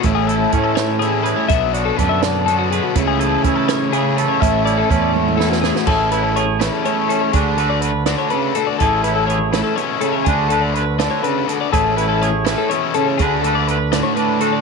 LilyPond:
<<
  \new Staff \with { instrumentName = "Clean electric guitar" } { \time 6/8 \key a \major \tempo 4. = 82 r16 gis'16 a'8 gis'16 a'16 cis''8 gis'8 b'16 cis''16 | e''8 d''16 a'16 b'16 e''16 d''8 a'16 fis'16 gis'16 fis'16 | r16 gis'16 a'8 gis'16 a'16 cis''8 gis'8 b'16 cis''16 | e''8 d''16 a'16 b'16 d''16 cis''8 a'16 fis'16 gis'16 fis'16 |
a'8 b'16 a'16 cis''8 b'16 a'16 cis''8 a'16 cis''16 | gis'8 a'16 d''16 b'8 d''16 cis''16 b'8 a'16 d''16 | a'8 b'16 a'16 cis''8 b'16 a'16 cis''8 a'16 cis''16 | gis'8 a'16 d''16 b'8 d''16 cis''16 b'8 a'16 d''16 |
a'8 b'16 a'16 cis''8 b'16 a'16 cis''8 a'16 cis''16 | gis'8 a'16 d''16 b'8 d''16 cis''16 b'8 a'16 d''16 | }
  \new Staff \with { instrumentName = "Clean electric guitar" } { \time 6/8 \key a \major << { r8 e'8 cis'4 e'8 gis'8 | r8 fis'8 d'4 fis'8 b'8 | r8 gis'8 e'4 gis'8 a'8 | r8 e'8 cis'4 e'8 gis'8 |
gis'8 e'8 gis'4. cis'8 | <d' fis' b'>8 b'8 b'2 | gis'8 e'8 gis'2 | <d' fis' b'>8 b'8 b'2 |
gis'8 e'8 gis'2 | b'8 b'8 b'4. fis'8 | } \\ { a,4 a4 e,4 | b,4 d4 b,4 | cis4 cis'4 cis4 | a,4 a4 e,4 |
a,4. e,8 a4 | d4. d8 cis8 b,8 | a,4. a,8 b,8 cis8 | d4. d8 cis8 b,8 |
a,4. a,8 b,8 cis8 | d4. a,8 d'4 | } >> }
  \new Staff \with { instrumentName = "Overdriven electric guitar" } { \time 6/8 \key a \major <a, e a cis' e'>2 <a, e a cis' e'>4 | <b, fis b d'>2 <b, fis b d'>4 | <cis e a e'>2 <cis e a e'>4 | <a, e a cis' e'>2 <a, e a cis' e'>4 |
<e a cis' e'>8 <e a cis' e'>8 r8 <e a cis' e'>8 <e a cis' e'>8 <e a cis' e'>8 | <d a d' fis'>8 <d a d' fis'>8 r8 <d a d' fis'>8 <d a d' fis'>8 <d a d' fis'>8 | <e a cis' e'>8 <e a cis' e'>8 r8 <e a cis' e'>8 <e a cis' e'>8 <e a cis' e'>8 | <d a d' fis'>8 <d a d' fis'>8 r8 <d a d' fis'>8 <d a d' fis'>8 <d a d' fis'>8 |
<e a cis' e'>8 <e a cis' e'>8 r8 <e a cis' e'>8 <e a cis' e'>8 <e a cis' e'>8 | <d a d' fis'>8 <d a d' fis'>8 r8 <d a d' fis'>8 <d a d' fis'>8 <d a d' fis'>8 | }
  \new Staff \with { instrumentName = "Fingered electric bass" } { \clef bass \time 6/8 \key a \major a,,4 a,2 | b,,4 fis,2 | cis,4 cis2 | a,,4 e,2 |
a,,2 r4 | d,2 r4 | a,,2 r4 | d,2 r4 |
a,,2 r4 | d,2 r4 | }
  \new DrumStaff \with { instrumentName = "Drums" } \drummode { \time 6/8 <hh bd>8 hh8 <hh bd>8 <hh sn>8 hh8 hh8 | <hh bd>8 hh8 <hh bd>8 <hh sn>8 hh8 hh8 | <hh bd>8 hh8 <hh bd>8 <hh sn>8 hh8 hh8 | <hh bd>8 hh8 <hh bd>8 tommh16 tommh16 sn16 sn16 sn16 sn16 |
<cymc bd>8 hh8 hh8 <hh sn>8 hh8 hh8 | <hh bd>8 hh8 hh8 <hh sn>8 hh8 hh8 | <hh bd>8 hh8 hh8 <hh sn>8 hh8 hh8 | <hh bd>8 hh8 hh8 <hh sn>8 hh8 hh8 |
<hh bd>8 hh8 hh8 <hh sn>8 hh8 hh8 | <hh bd>8 hh8 hh8 <hh sn>8 hh8 hh8 | }
>>